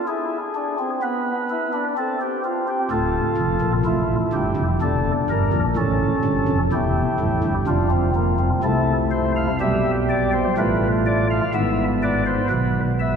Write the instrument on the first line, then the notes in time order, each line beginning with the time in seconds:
pipe organ
0.08 E4 G#4
0.55 D4
0.79 C4
1.02 B3 B4
1.50 E4
1.74 D4
1.98 C4 A4
2.21 G4
2.45 F4
2.68 G4
2.91 D1 D2 F4 A4
3.37 F1 F2
3.61 A#1 A#2
3.85 A1 A2 E4 F4
4.33 G1 G2 G4
4.57 F1 F2
4.81 E1 E2 D4 A4
5.30 G1 G2 A#4
5.53 A#1 A#2
5.76 A1 A2 C#4 A4
6.24 G1 G2
6.48 F1 F2
6.72 E1 E2 E4 G4
7.20 A1 A2
7.44 G1 G2
7.67 F1 F2 D4 F4
7.91 C4
8.15 A#3
8.39 C4
8.63 C2 C3 A3 E4 A4
9.11 C5
9.36 F5
9.61 B1 B2 G3 G4 E5
10.10 D5
10.33 C5
10.57 A1 A2 A3 F4 B4
11.06 D5
11.31 F5
11.54 G#1 G#2 B3 E4 E5
12.03 B4 D5
12.27 C5
12.50 B1 B2 B4
13.00 E5